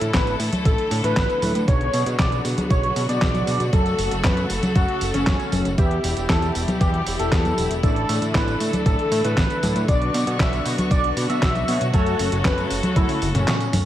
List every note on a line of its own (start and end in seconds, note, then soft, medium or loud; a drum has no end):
0.00 0.12 A2 loud
0.00 3.69 D3 medium
0.00 1.64 E3 medium
0.00 1.66 A3 medium
0.00 1.64 E4 medium
0.00 1.66 A4 medium
0.00 closed hi-hat medium
0.00 tambourine soft
0.14 0.36 A1 medium
0.14 0.34 B4 medium
0.14 kick loud
0.14 snare loud
0.14 clap loud
0.14 closed hi-hat medium
0.14 tambourine soft
0.27 closed hi-hat soft
0.27 tambourine soft
0.40 0.50 A2 medium
0.40 open hi-hat loud
0.40 tambourine medium
0.53 closed hi-hat medium
0.53 tambourine soft
0.53 high conga medium
0.65 0.76 A1 medium
0.65 0.96 A4 loud
0.65 kick loud
0.65 closed hi-hat medium
0.65 tambourine soft
0.78 closed hi-hat soft
0.91 1.02 A2 loud
0.91 open hi-hat loud
0.91 tambourine medium
1.04 1.15 A2 loud
1.04 1.58 B4 loud
1.04 snare soft
1.04 closed hi-hat medium
1.04 tambourine soft
1.17 1.27 A1 medium
1.17 kick loud
1.17 snare loud
1.17 clap loud
1.17 closed hi-hat medium
1.17 tambourine soft
1.30 closed hi-hat soft
1.30 tambourine soft
1.42 1.53 A2 loud
1.42 open hi-hat loud
1.42 tambourine medium
1.42 high conga medium
1.55 1.66 A2 medium
1.55 closed hi-hat medium
1.55 tambourine soft
1.68 1.89 B1 loud
1.68 3.71 C#3 medium
1.68 5.74 F#3 medium
1.68 3.71 B3 medium
1.68 5.74 F#4 medium
1.68 2.08 C#5 loud
1.68 kick loud
1.68 closed hi-hat medium
1.68 tambourine soft
1.81 closed hi-hat soft
1.94 2.04 B2 loud
1.94 open hi-hat medium
1.94 tambourine medium
2.06 2.17 B2 loud
2.06 closed hi-hat soft
2.06 tambourine soft
2.19 2.41 B1 medium
2.19 2.39 D5 medium
2.19 kick loud
2.19 snare loud
2.19 clap loud
2.19 closed hi-hat medium
2.19 tambourine soft
2.32 closed hi-hat soft
2.32 tambourine soft
2.45 2.56 B2 medium
2.45 open hi-hat loud
2.45 tambourine medium
2.58 closed hi-hat soft
2.58 tambourine soft
2.58 high conga medium
2.70 2.92 B1 medium
2.70 3.01 C#5 loud
2.70 kick loud
2.70 closed hi-hat medium
2.70 tambourine soft
2.83 closed hi-hat soft
2.96 3.07 B2 loud
2.96 open hi-hat loud
2.96 tambourine medium
3.09 3.20 B2 medium
3.09 3.63 D5 loud
3.09 closed hi-hat soft
3.09 tambourine soft
3.22 3.43 B1 loud
3.22 kick loud
3.22 snare loud
3.22 clap loud
3.22 closed hi-hat medium
3.35 closed hi-hat soft
3.35 tambourine soft
3.35 high conga medium
3.47 3.58 B2 loud
3.47 open hi-hat loud
3.47 tambourine medium
3.60 3.71 B2 medium
3.60 closed hi-hat medium
3.60 tambourine soft
3.73 3.95 F#2 loud
3.73 5.76 C#3 medium
3.73 5.76 A3 medium
3.73 4.13 A4 loud
3.73 5.76 A4 medium
3.73 kick loud
3.73 closed hi-hat medium
3.73 tambourine soft
3.86 closed hi-hat soft
3.86 tambourine soft
3.99 4.09 F#1 loud
3.99 open hi-hat loud
3.99 tambourine medium
4.11 4.22 F#1 loud
4.11 closed hi-hat medium
4.11 tambourine soft
4.24 4.46 F#2 medium
4.24 4.44 B4 medium
4.24 kick loud
4.24 snare loud
4.24 clap loud
4.24 closed hi-hat soft
4.24 tambourine soft
4.37 closed hi-hat soft
4.37 tambourine soft
4.50 4.61 F#1 medium
4.50 open hi-hat loud
4.50 tambourine medium
4.63 closed hi-hat soft
4.63 tambourine soft
4.63 high conga medium
4.75 4.86 F#2 medium
4.75 5.06 F#4 loud
4.75 kick loud
4.75 closed hi-hat medium
4.75 tambourine soft
4.88 closed hi-hat soft
5.01 5.12 F#1 medium
5.01 open hi-hat loud
5.01 tambourine medium
5.14 5.25 F#1 medium
5.14 5.68 C#4 loud
5.14 snare soft
5.14 closed hi-hat medium
5.14 tambourine soft
5.27 5.38 F#2 medium
5.27 kick loud
5.27 snare loud
5.27 clap loud
5.27 closed hi-hat medium
5.27 tambourine soft
5.40 closed hi-hat soft
5.40 tambourine soft
5.52 5.63 F#1 medium
5.52 open hi-hat loud
5.52 tambourine medium
5.52 high conga medium
5.65 5.76 F#1 medium
5.65 closed hi-hat soft
5.65 tambourine soft
5.78 6.00 E2 loud
5.78 7.81 B2 medium
5.78 7.81 E3 medium
5.78 7.81 G3 medium
5.78 7.55 B3 medium
5.78 7.55 E4 medium
5.78 9.85 E4 medium
5.78 7.55 G4 medium
5.78 7.81 G4 loud
5.78 6.19 G4 loud
5.78 7.55 E5 loud
5.78 kick loud
5.78 closed hi-hat medium
5.78 tambourine soft
5.91 closed hi-hat soft
6.04 6.15 E1 loud
6.04 open hi-hat loud
6.04 tambourine medium
6.17 6.27 E1 loud
6.17 closed hi-hat medium
6.17 tambourine soft
6.29 6.51 E2 medium
6.29 6.50 A4 medium
6.29 kick loud
6.29 snare loud
6.29 clap medium
6.29 closed hi-hat medium
6.29 tambourine soft
6.42 closed hi-hat soft
6.42 tambourine soft
6.55 6.66 E1 medium
6.55 open hi-hat loud
6.55 tambourine medium
6.68 closed hi-hat medium
6.68 tambourine soft
6.68 high conga medium
6.81 7.02 E2 medium
6.81 7.11 G4 medium
6.81 kick loud
6.81 closed hi-hat medium
6.81 tambourine soft
6.94 closed hi-hat soft
7.07 7.17 E1 loud
7.07 open hi-hat loud
7.07 tambourine medium
7.19 7.30 E1 medium
7.19 7.73 A4 loud
7.19 closed hi-hat medium
7.19 tambourine soft
7.32 7.54 E2 loud
7.32 kick loud
7.32 snare loud
7.32 clap loud
7.32 closed hi-hat medium
7.32 tambourine soft
7.45 closed hi-hat soft
7.45 tambourine soft
7.45 high conga medium
7.58 7.68 E1 loud
7.58 7.80 B3 medium
7.58 7.80 E4 medium
7.58 7.80 G4 medium
7.58 7.80 E5 medium
7.58 open hi-hat loud
7.58 tambourine medium
7.71 7.81 E1 medium
7.71 closed hi-hat soft
7.71 tambourine soft
7.83 8.05 A1 loud
7.83 11.90 D3 medium
7.83 9.87 E3 medium
7.83 9.08 A3 loud
7.83 9.86 A3 medium
7.83 9.08 D4 medium
7.83 9.08 E4 medium
7.83 8.24 A4 loud
7.83 9.86 A4 medium
7.83 9.08 D5 loud
7.83 kick loud
7.83 closed hi-hat medium
7.83 tambourine soft
7.96 closed hi-hat soft
8.09 8.20 A2 loud
8.09 open hi-hat loud
8.09 tambourine medium
8.22 8.33 A2 loud
8.22 closed hi-hat medium
8.22 tambourine soft
8.35 8.56 A1 medium
8.35 8.55 B4 medium
8.35 kick loud
8.35 snare loud
8.35 clap loud
8.35 closed hi-hat medium
8.35 tambourine soft
8.48 closed hi-hat soft
8.48 tambourine soft
8.60 8.71 A2 medium
8.60 open hi-hat loud
8.60 tambourine medium
8.73 closed hi-hat medium
8.73 tambourine soft
8.73 high conga medium
8.86 8.97 A1 medium
8.86 9.16 A4 loud
8.86 kick loud
8.86 closed hi-hat medium
8.86 tambourine soft
8.99 closed hi-hat soft
9.12 9.22 A2 loud
9.12 open hi-hat loud
9.12 tambourine medium
9.24 9.35 A2 loud
9.24 9.78 B4 loud
9.24 snare soft
9.24 closed hi-hat medium
9.24 tambourine soft
9.37 9.48 A1 medium
9.37 kick loud
9.37 snare loud
9.37 clap medium
9.37 closed hi-hat medium
9.37 tambourine soft
9.50 closed hi-hat soft
9.50 tambourine soft
9.63 9.74 A2 medium
9.63 open hi-hat loud
9.63 tambourine medium
9.63 high conga medium
9.76 9.86 A2 medium
9.76 closed hi-hat medium
9.76 tambourine soft
9.88 10.10 B1 loud
9.88 13.85 F#3 medium
9.88 11.91 B3 medium
9.88 11.65 B3 medium
9.88 11.65 D4 medium
9.88 13.85 F#4 medium
9.88 11.65 F#4 medium
9.88 10.29 D5 loud
9.88 11.65 D5 loud
9.88 11.91 C#6 medium
9.88 kick loud
9.88 closed hi-hat medium
9.88 tambourine soft
10.01 closed hi-hat soft
10.14 10.25 B2 loud
10.14 open hi-hat loud
10.14 tambourine medium
10.27 10.38 B2 loud
10.27 closed hi-hat medium
10.27 tambourine soft
10.40 10.61 B1 medium
10.40 10.60 E5 medium
10.40 kick loud
10.40 snare loud
10.40 clap loud
10.40 closed hi-hat medium
10.40 tambourine soft
10.53 closed hi-hat soft
10.53 tambourine soft
10.66 10.76 B2 medium
10.66 open hi-hat loud
10.66 tambourine medium
10.78 closed hi-hat medium
10.78 tambourine soft
10.78 high conga medium
10.91 11.12 B1 medium
10.91 11.21 D5 medium
10.91 kick loud
10.91 closed hi-hat medium
10.91 tambourine soft
11.04 closed hi-hat soft
11.17 11.27 B2 loud
11.17 open hi-hat loud
11.17 tambourine medium
11.29 11.40 B2 medium
11.29 11.83 E5 loud
11.29 closed hi-hat medium
11.29 tambourine soft
11.42 11.64 B1 loud
11.42 kick loud
11.42 snare loud
11.42 clap loud
11.42 closed hi-hat medium
11.42 tambourine soft
11.55 closed hi-hat soft
11.55 tambourine soft
11.55 high conga medium
11.68 11.79 B2 loud
11.68 11.90 B3 medium
11.68 11.90 D4 medium
11.68 11.90 F#4 medium
11.68 11.90 C#5 medium
11.68 open hi-hat loud
11.68 tambourine medium
11.81 11.92 B2 medium
11.81 closed hi-hat medium
11.81 tambourine soft
11.93 12.15 F#2 medium
11.93 13.85 C#3 medium
11.93 13.19 A3 loud
11.93 13.85 A3 medium
11.93 13.19 C#4 medium
11.93 13.19 F#4 medium
11.93 12.34 A4 loud
11.93 13.85 A4 medium
11.93 13.19 C#5 loud
11.93 kick loud
11.93 closed hi-hat medium
11.93 tambourine soft
12.06 closed hi-hat soft
12.06 tambourine soft
12.19 12.30 F#1 loud
12.19 open hi-hat loud
12.19 tambourine medium
12.32 12.43 F#1 loud
12.32 closed hi-hat medium
12.32 tambourine soft
12.45 12.66 F#2 medium
12.45 12.65 B4 medium
12.45 kick loud
12.45 snare loud
12.45 clap loud
12.45 closed hi-hat medium
12.45 tambourine soft
12.58 closed hi-hat soft
12.58 tambourine soft
12.71 12.81 F#1 medium
12.71 open hi-hat loud
12.71 tambourine medium
12.83 closed hi-hat medium
12.83 tambourine soft
12.83 high conga medium
12.96 13.07 F#2 medium
12.96 13.26 E4 loud
12.96 kick loud
12.96 closed hi-hat medium
12.96 high tom medium
12.96 tambourine soft
13.09 open hi-hat medium
13.09 high tom medium
13.09 tambourine soft
13.22 13.33 F#1 loud
13.22 open hi-hat loud
13.22 high tom medium
13.22 tambourine medium
13.34 13.45 F#1 loud
13.34 13.85 C#4 loud
13.34 snare soft
13.34 closed hi-hat medium
13.34 mid tom medium
13.34 tambourine soft
13.48 snare loud
13.48 clap loud
13.48 closed hi-hat medium
13.48 mid tom medium
13.48 tambourine soft
13.60 closed hi-hat soft
13.60 tambourine soft
13.73 mid tom loud
13.73 open hi-hat loud
13.73 tambourine medium
13.73 high conga medium